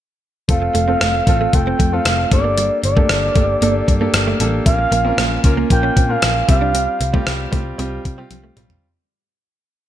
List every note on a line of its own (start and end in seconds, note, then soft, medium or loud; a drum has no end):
0.48 0.67 F1 medium
0.48 0.78 A3 medium
0.48 0.78 C4 medium
0.48 0.78 F4 medium
0.48 0.78 A4 medium
0.48 1.56 F5 loud
0.48 kick loud
0.48 closed hi-hat medium
0.62 muted clean electric guitar stroke soft
0.75 0.94 F1 medium
0.75 0.85 A3 medium
0.75 closed hi-hat medium
0.88 1.17 A3 medium
0.88 0.98 C4 medium
0.88 1.17 C4 medium
0.88 1.17 F4 medium
0.88 1.18 A4 medium
1.01 1.20 F1 medium
1.01 1.11 A3 medium
1.01 cross-stick loud
1.01 closed hi-hat medium
1.15 muted clean electric guitar stroke soft
1.27 1.46 A1 medium
1.27 1.47 A3 medium
1.27 1.47 C4 medium
1.27 1.47 F4 medium
1.27 1.47 A4 medium
1.27 kick medium
1.27 closed hi-hat medium
1.41 1.50 A3 medium
1.53 1.72 F1 medium
1.53 1.82 A3 medium
1.53 1.83 C4 medium
1.53 1.83 F4 medium
1.53 1.83 A4 medium
1.53 1.95 G5 loud
1.53 muted clean electric guitar stroke soft
1.53 kick medium
1.53 closed hi-hat medium
1.67 1.77 C4 medium
1.79 1.98 F2 medium
1.79 1.89 A3 medium
1.79 kick medium
1.79 closed hi-hat medium
1.92 2.21 A3 medium
1.92 2.21 C4 medium
1.92 2.22 F4 medium
1.92 2.22 A4 medium
1.92 2.32 F5 loud
2.05 2.24 F1 medium
2.05 muted clean electric guitar stroke soft
2.05 cross-stick loud
2.05 closed hi-hat loud
2.31 2.69 G1 medium
2.31 2.38 A3 medium
2.31 2.41 A3 medium
2.31 2.84 D4 medium
2.31 2.84 G4 medium
2.31 2.84 A4 medium
2.31 2.81 D5 loud
2.31 kick loud
2.31 closed hi-hat medium
2.38 2.87 A#3 medium
2.44 2.54 A#3 medium
2.58 2.67 G3 medium
2.58 closed hi-hat medium
2.83 3.02 G1 medium
2.83 4.37 D5 medium
2.83 muted clean electric guitar stroke soft
2.83 closed hi-hat medium
2.96 3.06 A3 medium
2.96 3.26 A#3 medium
2.96 3.26 D4 medium
2.96 3.26 G4 medium
2.96 3.26 A4 medium
2.96 kick medium
3.09 3.28 G1 medium
3.09 cross-stick loud
3.09 closed hi-hat medium
3.35 3.54 G1 medium
3.35 3.46 A3 medium
3.35 3.55 A#3 medium
3.35 3.55 D4 medium
3.35 3.56 G4 medium
3.35 3.56 A4 medium
3.35 kick medium
3.35 closed hi-hat medium
3.62 3.80 G1 medium
3.62 3.91 A#3 medium
3.62 3.72 A#3 medium
3.62 3.91 D4 medium
3.62 3.91 G4 medium
3.62 3.91 A4 medium
3.62 closed hi-hat medium
3.88 4.07 G2 medium
3.88 muted clean electric guitar stroke soft
3.88 kick medium
3.88 closed hi-hat medium
4.01 4.30 A#3 medium
4.01 4.11 A#3 medium
4.01 4.30 D4 medium
4.01 4.30 G4 medium
4.01 4.30 A4 medium
4.13 4.32 G1 medium
4.13 cross-stick loud
4.13 closed hi-hat loud
4.27 4.37 A3 medium
4.40 4.59 A1 medium
4.40 4.50 G3 medium
4.40 4.59 A#3 medium
4.40 4.59 D4 medium
4.40 4.60 G4 medium
4.40 4.60 A4 medium
4.40 closed hi-hat medium
4.66 4.85 A#1 loud
4.66 4.95 A#3 medium
4.66 4.95 C#4 medium
4.66 4.95 F4 medium
4.66 4.96 A#4 medium
4.66 5.40 F5 loud
4.66 kick loud
4.66 closed hi-hat medium
4.79 muted clean electric guitar stroke soft
4.92 5.11 A#1 medium
4.92 5.02 A#3 medium
4.92 closed hi-hat medium
5.05 5.34 A#3 medium
5.05 5.15 C4 medium
5.05 5.35 C#4 medium
5.05 5.35 F4 medium
5.05 5.35 A#4 medium
5.18 5.37 A#1 medium
5.18 5.28 A#3 medium
5.18 cross-stick loud
5.18 closed hi-hat medium
5.31 muted clean electric guitar stroke soft
5.44 5.63 C#2 medium
5.44 5.64 A#3 medium
5.44 5.64 C#4 medium
5.44 5.64 F4 medium
5.44 5.64 A#4 medium
5.44 kick medium
5.44 closed hi-hat medium
5.57 5.67 A#3 medium
5.70 5.89 A#1 medium
5.70 5.99 A#3 medium
5.70 6.00 C#4 medium
5.70 6.00 F4 medium
5.70 6.00 A#4 medium
5.70 6.12 G5 loud
5.70 muted clean electric guitar stroke soft
5.70 kick medium
5.70 closed hi-hat medium
5.83 5.93 C#4 medium
5.96 6.15 A#2 medium
5.96 6.06 C4 medium
5.96 kick medium
5.96 closed hi-hat medium
6.09 6.38 A#3 medium
6.09 6.38 C#4 medium
6.09 6.39 F4 medium
6.09 6.39 A#4 medium
6.09 6.49 F5 loud
6.22 6.41 A#1 medium
6.22 muted clean electric guitar stroke soft
6.22 cross-stick loud
6.22 closed hi-hat loud
6.48 6.86 C2 medium
6.48 7.01 G3 medium
6.48 6.58 C4 medium
6.48 7.01 C4 medium
6.48 7.01 F4 medium
6.48 7.01 G4 medium
6.48 7.50 F5 loud
6.48 kick loud
6.48 closed hi-hat medium
6.61 6.71 D4 medium
6.75 6.85 C4 medium
6.75 closed hi-hat medium
7.01 7.19 C2 medium
7.01 muted clean electric guitar stroke soft
7.01 closed hi-hat medium
7.13 7.43 G3 medium
7.13 7.24 A3 medium
7.13 7.43 C4 medium
7.13 7.43 F4 medium
7.13 7.43 G4 medium
7.13 kick medium
7.27 7.46 C2 medium
7.27 cross-stick loud
7.27 closed hi-hat medium
7.52 7.71 C2 medium
7.52 7.72 G3 medium
7.52 7.63 A3 medium
7.52 7.72 C4 medium
7.52 7.72 F4 medium
7.52 7.72 G4 medium
7.52 kick medium
7.52 closed hi-hat medium
7.78 7.98 C2 loud
7.78 8.08 G3 medium
7.78 8.08 C4 medium
7.78 7.89 C4 medium
7.78 8.08 F4 medium
7.78 8.08 G4 medium
7.78 closed hi-hat medium
8.05 8.24 C3 medium
8.05 muted clean electric guitar stroke soft
8.05 kick medium
8.05 closed hi-hat medium
8.18 8.47 G3 medium
8.18 8.28 C4 medium
8.18 8.47 C4 medium
8.18 8.48 F4 medium
8.18 8.48 G4 medium
8.31 8.50 C2 medium
8.31 muted clean electric guitar stroke soft
8.31 closed hi-hat loud
8.31 high tom medium
8.44 8.54 A3 medium
8.57 8.76 B1 medium
8.57 8.76 G3 medium
8.57 8.67 G3 medium
8.57 8.77 C4 medium
8.57 8.77 F4 medium
8.57 8.77 G4 medium
8.57 closed hi-hat medium
8.57 mid tom medium
8.70 floor tom medium